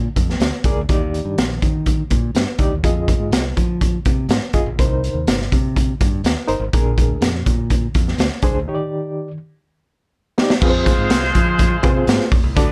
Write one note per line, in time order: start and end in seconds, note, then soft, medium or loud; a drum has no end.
0.16 0.36 F2 medium
0.16 kick medium
0.16 closed hi-hat medium
0.30 snare soft
0.40 0.50 D2 medium
0.40 snare medium
0.40 closed hi-hat medium
0.64 0.74 C2 medium
0.64 0.80 G#4 medium
0.64 0.80 A#4 medium
0.64 0.80 D5 medium
0.64 kick medium
0.64 closed hi-hat medium
0.76 0.87 D2 medium
0.89 1.19 D#2 loud
0.89 1.58 D#3 medium
0.89 1.48 D#4 medium
0.89 1.48 G4 medium
0.89 1.48 D5 medium
0.89 kick loud
0.89 closed hi-hat medium
1.14 closed hi-hat medium
1.25 1.35 G2 medium
1.38 1.58 A#1 medium
1.38 snare loud
1.38 closed hi-hat medium
1.62 2.02 D#3 medium
1.62 kick medium
1.62 closed hi-hat medium
1.86 kick medium
1.86 closed hi-hat medium
2.10 2.31 A#2 medium
2.10 kick medium
2.10 closed hi-hat medium
2.35 2.45 G2 medium
2.35 snare medium
2.35 closed hi-hat medium
2.59 2.69 D2 medium
2.59 2.74 D#4 medium
2.59 2.74 G4 medium
2.59 2.74 D5 medium
2.59 kick medium
2.59 closed hi-hat medium
2.72 2.82 D#2 medium
2.84 3.14 F2 medium
2.84 3.43 F4 medium
2.84 3.43 G#4 medium
2.84 3.44 D#5 medium
2.84 kick medium
2.84 closed hi-hat medium
3.08 kick medium
3.08 closed hi-hat medium
3.20 3.30 G#2 medium
3.31 3.52 C2 medium
3.31 snare loud
3.31 closed hi-hat loud
3.57 3.97 F3 medium
3.57 kick medium
3.57 closed hi-hat medium
3.81 kick medium
3.81 closed hi-hat medium
4.05 4.26 C3 medium
4.05 kick medium
4.05 closed hi-hat medium
4.29 4.39 G#2 medium
4.29 snare loud
4.29 closed hi-hat medium
4.53 4.64 G#1 medium
4.53 4.69 F4 medium
4.53 4.69 G#4 medium
4.53 4.69 D#5 medium
4.53 kick medium
4.53 closed hi-hat medium
4.66 4.76 A#1 medium
4.79 5.09 C2 medium
4.79 5.48 C3 medium
4.79 4.85 D4 medium
4.79 5.38 A#4 medium
4.79 5.38 C5 medium
4.79 kick loud
4.79 closed hi-hat medium
4.85 5.41 D#4 medium
5.04 closed hi-hat medium
5.14 5.24 D#2 medium
5.27 5.47 G1 medium
5.27 snare loud
5.27 closed hi-hat loud
5.41 snare soft
5.52 5.92 C3 medium
5.52 kick medium
5.52 closed hi-hat medium
5.76 kick medium
5.76 closed hi-hat medium
6.01 6.20 G2 medium
6.01 kick medium
6.01 closed hi-hat medium
6.24 6.34 D#2 medium
6.24 snare medium
6.24 closed hi-hat medium
6.47 6.59 G1 medium
6.47 6.63 D#4 medium
6.47 6.63 A#4 medium
6.47 6.63 C5 loud
6.47 closed hi-hat medium
6.60 6.70 G#1 medium
6.73 7.03 A#1 medium
6.73 7.43 A#2 medium
6.73 7.33 D4 medium
6.73 7.33 G#4 medium
6.73 7.33 A#4 medium
6.73 kick medium
6.73 closed hi-hat medium
6.98 kick medium
6.98 closed hi-hat medium
7.08 7.19 D2 medium
7.21 7.41 F2 medium
7.21 snare loud
7.21 closed hi-hat loud
7.35 snare soft
7.46 7.86 A#2 medium
7.46 kick medium
7.46 closed hi-hat medium
7.70 kick medium
7.70 closed hi-hat medium
7.94 8.15 F2 medium
7.94 kick medium
7.94 closed hi-hat medium
8.08 snare soft
8.18 8.29 D2 medium
8.18 snare loud
8.18 closed hi-hat medium
8.32 snare soft
8.42 8.53 C2 medium
8.42 8.58 D4 medium
8.42 8.58 G#4 medium
8.42 8.59 C5 loud
8.42 kick medium
8.42 closed hi-hat medium
8.55 8.65 D2 medium
8.68 9.37 D#3 medium
8.68 9.27 D#4 medium
8.68 9.27 G4 medium
8.68 8.74 C#5 medium
8.75 9.30 D5 medium
10.38 10.53 D#4 medium
10.38 10.53 G4 medium
10.38 10.53 D5 medium
10.38 snare medium
10.50 snare medium
10.62 10.92 F2 loud
10.62 12.29 G#3 medium
10.62 11.22 C4 medium
10.62 12.29 F4 medium
10.62 11.22 F4 medium
10.62 11.22 G#4 medium
10.62 10.69 B4 medium
10.62 12.29 C5 loud
10.62 kick loud
10.62 crash loud
10.62 muted conga soft
10.70 11.25 C5 medium
10.86 kick medium
10.86 closed hi-hat medium
10.86 muted conga soft
10.98 11.08 G#2 medium
11.10 11.30 C2 medium
11.10 snare loud
11.10 closed hi-hat loud
11.10 high conga medium
11.24 snare soft
11.35 11.75 F3 medium
11.35 kick medium
11.35 closed hi-hat medium
11.58 kick medium
11.58 closed hi-hat medium
11.58 muted conga soft
11.58 low conga medium
11.83 12.04 C3 medium
11.83 12.28 C4 medium
11.83 12.28 F4 medium
11.83 12.28 G#4 medium
11.83 11.90 B4 medium
11.83 kick loud
11.83 closed hi-hat medium
11.83 muted conga soft
11.90 12.31 C5 medium
12.07 12.18 G#2 loud
12.07 snare loud
12.07 closed hi-hat medium
12.07 high conga medium
12.20 snare soft
12.20 high conga medium
12.31 12.42 A#1 medium
12.31 kick loud
12.31 open hi-hat medium
12.43 12.54 C2 loud
12.56 12.72 D2 loud
12.56 12.72 D3 medium
12.56 12.72 F#3 medium
12.56 12.72 D4 medium
12.56 12.72 F#4 medium
12.56 12.72 A4 medium
12.56 12.72 B4 medium
12.56 12.72 D5 medium
12.56 kick loud
12.56 closed hi-hat medium
12.56 muted conga medium